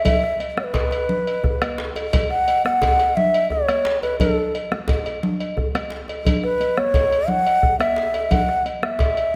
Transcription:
0.05 bansuri E5, bombo low, cowbell, low conga, djembe bass
0.24 bombo rim
0.40 cowbell, djembe slap, high conga
0.57 bansuri C#5, bombo rim, high conga
0.64 bansuri B4
0.74 bombo low, cowbell, djembe slap, high conga, djembe bass
0.91 cowbell, djembe tone
1.09 djembe slap, low conga
1.27 cowbell
1.44 bombo rim, bombo low, djembe slap, djembe bass
1.62 bombo rim, cowbell, high conga
1.78 djembe slap, high conga
1.96 cowbell, djembe tone
2.13 bombo low, cowbell, low conga, djembe bass
2.31 bansuri F#5, bombo rim
2.47 cowbell, djembe slap, high conga
2.65 bansuri F#5, bombo rim, high conga
2.82 bombo low, cowbell, djembe slap, high conga, djembe bass
2.99 cowbell, djembe tone
3.16 bansuri E5, djembe slap, low conga
3.34 cowbell
3.50 bansuri C#5, bombo rim, djembe slap, djembe bass
3.69 bombo rim, cowbell, high conga
3.85 djembe slap, high conga
4.02 bansuri B4, cowbell, djembe tone
4.19 bansuri A4, bombo low, cowbell, high conga, djembe bass, low conga
4.55 cowbell, djembe slap
4.72 bombo rim, high conga
4.88 bombo rim, bombo low, cowbell, djembe slap, djembe bass
5.05 cowbell, djembe tone
5.23 bombo rim, low conga
5.40 cowbell
5.57 bombo rim, bombo low, djembe bass
5.75 bombo rim, cowbell, high conga
5.90 djembe slap
6.08 cowbell, djembe tone
6.25 bombo low, cowbell, djembe bass, low conga
6.43 bansuri B4, bombo rim
6.60 cowbell, djembe slap, high conga
6.77 bansuri C#5, bombo rim, high conga
6.94 bombo low, cowbell, djembe slap, high conga, djembe bass
7.11 cowbell, djembe tone
7.28 bansuri F#5, djembe slap, low conga
7.47 cowbell
7.63 bombo rim, bombo low, djembe slap, djembe bass
7.79 bansuri E5, bombo rim, cowbell, high conga
7.96 djembe slap
8.14 cowbell, djembe tone
8.31 bansuri F#5, bombo low, cowbell, low conga, djembe bass
8.49 bombo rim
8.65 cowbell, djembe slap, high conga
8.83 bansuri E5, bombo rim, high conga
8.99 bombo low, cowbell, djembe slap, high conga, djembe bass
9.17 cowbell

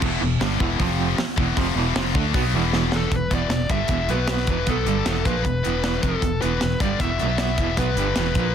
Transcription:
0.02 fingered electric bass E1, overdriven electric guitar E2 B2 E3, kick, crash
0.21 fingered electric bass E1, overdriven electric guitar E2 B2
0.41 fingered electric bass G1, overdriven electric guitar G2 D3 G3, snare, open hi-hat
0.60 fingered electric bass E1, overdriven electric guitar E2 B2 E3, kick
0.78 fingered electric bass F1, overdriven electric guitar F2 C3 F3, kick, open hi-hat
1.18 muted overdriven electric guitar stroke, muted distorted electric guitar stroke, snare, open hi-hat
1.36 fingered electric bass E1, overdriven electric guitar E2 B2 E3, kick
1.57 fingered electric bass F1, overdriven electric guitar F2 C3 F3, kick, open hi-hat
1.75 fingered electric bass E1, overdriven electric guitar E2 B2 E3
1.95 fingered electric bass F1, overdriven electric guitar F2 C3 F3, snare, open hi-hat
2.15 fingered electric bass D2, overdriven electric guitar D3 A3 D4, kick
2.33 fingered electric bass B1, overdriven electric guitar B2 F#3 B3, kick, open hi-hat
2.53 fingered electric bass E1, overdriven electric guitar E2 B2 E3
2.73 snare
2.92 snare
2.97 lead electric guitar A4
3.11 fingered electric bass E1, overdriven electric guitar E2 B2, kick, closed hi-hat
3.16 lead electric guitar B4
3.30 fingered electric bass E1, overdriven electric guitar E2 B2 E3, kick, closed hi-hat
3.35 lead electric guitar D5
3.49 fingered electric bass E1, overdriven electric guitar E2 B2, snare, closed hi-hat
3.69 fingered electric bass G1, overdriven electric guitar G2 D3 G3, lead electric guitar E5, kick, closed hi-hat
3.88 fingered electric bass E1, overdriven electric guitar E2 B2 E3, kick, closed hi-hat
4.08 fingered electric bass B1, overdriven electric guitar B2 F#3 B3, lead electric guitar B4, closed hi-hat
4.28 snare, closed hi-hat
4.37 snare
4.47 fingered electric bass E1, overdriven electric guitar E2 B2 E3, kick, closed hi-hat
4.51 lead electric guitar B4
4.66 fingered electric bass B1, overdriven electric guitar B2 F#3 B3, kick, closed hi-hat
4.71 lead electric guitar A4
4.85 fingered electric bass G1, overdriven electric guitar G2 D3 G3, closed hi-hat
5.06 fingered electric bass E1, overdriven electric guitar E2 B2 E3, snare, closed hi-hat
5.25 fingered electric bass A#1, overdriven electric guitar A#2 F3 A#3, lead electric guitar B4, kick, closed hi-hat
5.44 fingered electric bass E1, overdriven electric guitar E2 B2, kick, closed hi-hat
5.63 fingered electric bass E1, overdriven electric guitar E2 B2 E3, closed hi-hat
5.84 snare, closed hi-hat
6.02 fingered electric bass F1, overdriven electric guitar F2 C3 F3, lead electric guitar A4, kick, closed hi-hat
6.21 fingered electric bass E1, overdriven electric guitar E2 B2, kick, closed hi-hat
6.41 fingered electric bass E1, overdriven electric guitar E2 B2 E3, lead electric guitar B4, closed hi-hat
6.59 fingered electric bass E1, overdriven electric guitar E2 B2, snare, closed hi-hat
6.80 fingered electric bass G1, overdriven electric guitar G2 D3 G3, lead electric guitar D5, kick, closed hi-hat
7.00 fingered electric bass E1, overdriven electric guitar E2 B2 E3, lead electric guitar E5, kick, closed hi-hat
7.19 fingered electric bass B1, overdriven electric guitar B2 F#3 B3, closed hi-hat
7.38 lead electric guitar E5, snare, closed hi-hat
7.58 fingered electric bass E1, overdriven electric guitar E2 B2 E3, kick, closed hi-hat
7.77 fingered electric bass B1, overdriven electric guitar B2 F#3 B3, lead electric guitar B4, kick, closed hi-hat
7.95 fingered electric bass G1, overdriven electric guitar G2 D3 G3, closed hi-hat
8.16 fingered electric bass E1, overdriven electric guitar E2 B2 E3, snare, closed hi-hat
8.34 fingered electric bass A#1, overdriven electric guitar A#2 F3 A#3, kick, closed hi-hat

